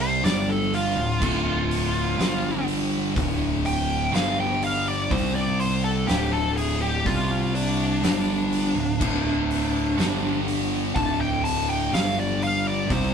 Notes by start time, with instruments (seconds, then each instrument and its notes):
Already playing: picked electric bass C2, distorted electric guitar C3 G3 C4
0.00 lead electric guitar C5
0.23 picked electric bass G1, distorted electric guitar G2 D3 G3, lead electric guitar D5, snare, open hi-hat
0.49 lead electric guitar A4
0.73 lead electric guitar F4, open hi-hat
0.96 picked electric bass D1, distorted electric guitar D2 A2
1.20 picked electric bass D1, distorted electric guitar D2 A2 D3, kick, crash
1.71 open hi-hat
2.17 picked electric bass G1, distorted electric guitar G2 D3 G3, snare, open hi-hat
2.68 open hi-hat
3.15 picked electric bass D1, distorted electric guitar D2 A2 D3, kick, open hi-hat
3.65 lead electric guitar G5, open hi-hat
4.12 picked electric bass G1, distorted electric guitar G2 D3 G3, lead electric guitar F5, snare, open hi-hat
4.40 lead electric guitar G5
4.62 lead electric guitar F5, open hi-hat
4.88 lead electric guitar D5
5.10 picked electric bass C2, distorted electric guitar C3 G3 C4, lead electric guitar C5, kick, open hi-hat
5.35 lead electric guitar D5
5.60 lead electric guitar C5, open hi-hat
5.84 lead electric guitar A4
6.08 picked electric bass D1, distorted electric guitar D2 A2 D3, lead electric guitar G4, snare, open hi-hat
6.33 lead electric guitar A4
6.57 lead electric guitar G#4, open hi-hat
6.81 lead electric guitar G4
7.05 picked electric bass C2, distorted electric guitar C3 G3 C4, lead electric guitar F4, kick, open hi-hat
7.55 lead electric guitar D4, open hi-hat
8.02 picked electric bass G1, distorted electric guitar G2 D3 G3, snare, open hi-hat
8.53 open hi-hat
8.75 picked electric bass D1, distorted electric guitar D2 A2
8.99 picked electric bass D1, distorted electric guitar D2 A2 D3, kick, crash
9.51 open hi-hat
9.97 picked electric bass G1, distorted electric guitar G2 D3 G3, snare, open hi-hat
10.48 open hi-hat
10.94 picked electric bass D1, distorted electric guitar D2 A2 D3, lead electric guitar A5, kick, open hi-hat
11.21 lead electric guitar G5
11.44 lead electric guitar A5, open hi-hat
11.69 lead electric guitar G5
11.91 picked electric bass G1, distorted electric guitar G2 D3 G3, lead electric guitar F5, open hi-hat
11.95 snare
12.19 lead electric guitar D5
12.42 lead electric guitar F5, open hi-hat
12.68 lead electric guitar D5
12.88 picked electric bass C2, distorted electric guitar C3 G3 C4, kick, open hi-hat
12.92 lead electric guitar C5